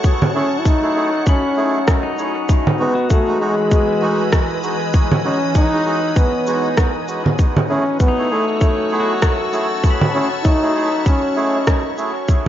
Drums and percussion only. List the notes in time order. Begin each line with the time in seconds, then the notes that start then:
0.04 kick, shaker
0.22 low conga
0.65 kick, shaker
1.26 kick, shaker
1.88 kick, cross-stick, shaker
2.18 shaker
2.49 kick, shaker
2.67 low conga
3.10 kick, shaker
3.71 kick, shaker
4.32 kick, cross-stick, shaker
4.63 shaker
4.94 kick, shaker
5.12 low conga
5.55 kick, shaker
6.16 kick, shaker
6.47 shaker
6.77 kick, cross-stick, shaker
7.08 shaker
7.26 low conga
7.39 kick, shaker
7.57 low conga
8.00 kick, shaker
8.61 kick, shaker
9.22 kick, cross-stick, shaker
9.53 shaker
9.84 kick, shaker
10.01 low conga
10.45 kick, shaker
11.06 kick, shaker
11.67 kick, cross-stick, shaker
11.98 shaker
12.28 kick, shaker